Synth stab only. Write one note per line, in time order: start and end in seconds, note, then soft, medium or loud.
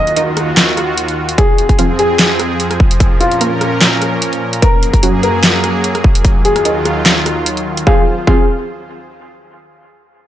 0.17 0.22 D#4 medium
0.17 0.22 A#4 medium
0.17 0.22 D#5 medium
1.79 1.84 F3 medium
1.79 1.84 C4 medium
1.79 1.84 F4 medium
3.41 3.46 A#3 medium
3.41 3.46 F4 medium
3.41 3.46 A#4 medium
5.03 5.08 F#3 medium
5.03 5.08 C#4 medium
5.03 5.08 F#4 medium
6.65 6.70 D#4 medium
6.65 6.70 A#4 medium
6.65 6.70 D#5 medium
7.87 7.99 F3 medium
7.87 7.99 C4 medium
7.87 7.99 F4 medium
8.27 8.43 F3 medium
8.27 8.43 C4 medium
8.27 8.43 F4 loud